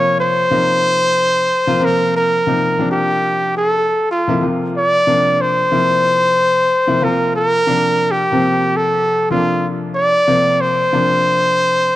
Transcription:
Already playing: C3 F3 A#3 F4 C#5
0.20 C5
0.51 C3 F3 A#3 D#4
1.67 C3 F3 A#3 F4
1.81 C3 F3 A#3 C4
1.85 A#4
2.16 A#4
2.46 C3 F3 A#3 D#4
2.79 C3 F3 A#3 D4
2.91 G4
3.57 A4
4.11 F4
4.28 C3 F3 A#3 E4
4.41 C3 F3 A#3 F4
4.77 D5
5.07 C3 F3 A#3 D4
5.41 C5
5.71 C3 F3 A#3 E4
6.87 C3 F3 A#3 E4
7.02 C3 F3 A#3 F4 A#4
7.36 A#4
7.67 C3 F3 A#3 D4
8.11 G4
8.32 C3 F3 A#3 C4
8.76 A4
9.30 C3 F3 A#3 D4 F4
9.95 D5
10.27 C3 F3 A#3 C4
10.61 C5
10.92 C3 F3 A#3 D4

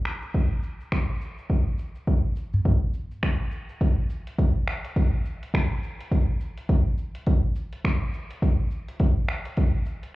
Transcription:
0.05 finger snap, shaker
0.22 shaker
0.34 kick, shaker
0.63 shaker
0.80 shaker
0.92 finger snap, kick, shaker
1.21 shaker
1.38 shaker
1.50 kick, shaker
1.78 shaker
1.95 shaker
2.07 kick, shaker
2.36 shaker
2.53 udu, shaker
2.65 kick, shaker
2.94 shaker
3.11 shaker
3.23 finger snap, kick, shaker
3.52 shaker
3.69 shaker
3.81 kick, closed hi-hat, shaker
4.10 shaker
4.27 closed hi-hat, shaker
4.39 kick, closed hi-hat, shaker
4.68 finger snap, shaker
4.85 closed hi-hat, shaker
4.96 kick, closed hi-hat, shaker
5.25 shaker
5.43 closed hi-hat, shaker
5.54 finger snap, kick, closed hi-hat, shaker
5.83 shaker
6.01 closed hi-hat, shaker
6.12 kick, closed hi-hat, shaker
6.41 shaker
6.58 closed hi-hat, shaker
6.69 kick, closed hi-hat, shaker
6.98 shaker
7.15 closed hi-hat, shaker
7.27 kick, closed hi-hat, shaker
7.55 shaker
7.73 closed hi-hat, shaker
7.85 finger snap, kick, closed hi-hat, shaker
8.14 shaker
8.31 closed hi-hat, shaker
8.42 kick, closed hi-hat, shaker
8.71 shaker
8.88 closed hi-hat, shaker
9.00 kick, closed hi-hat, shaker
9.29 finger snap, shaker
9.45 closed hi-hat, shaker
9.57 kick, closed hi-hat, shaker
9.86 shaker
10.03 closed hi-hat, shaker

